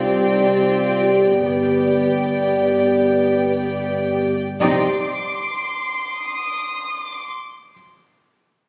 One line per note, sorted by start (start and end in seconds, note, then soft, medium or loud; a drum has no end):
0.00 1.39 C2 medium
0.00 1.42 C4 medium
0.00 0.24 F4 soft
0.00 1.39 G4 medium
0.00 1.40 D5 soft
0.00 1.38 G5 soft
0.00 1.39 G5 medium
0.26 0.63 D#4 soft
0.64 1.03 F4 soft
1.02 1.42 G4 soft
1.42 4.37 G1 soft
1.42 4.18 B3 soft
1.42 4.36 G4 soft
1.42 4.22 B4 soft
1.42 4.37 D5 soft
1.42 4.38 G5 soft
4.60 5.04 C2 medium
4.60 5.05 C4 medium
4.60 5.04 D#4 medium
4.60 4.97 G4 soft
4.60 4.96 D5 soft
4.60 5.05 D5 soft
4.60 5.04 G5 soft
4.60 7.29 C6 soft
4.60 6.52 D6 soft
4.60 taiko soft
6.17 7.01 D#6 soft
7.01 7.29 D6 soft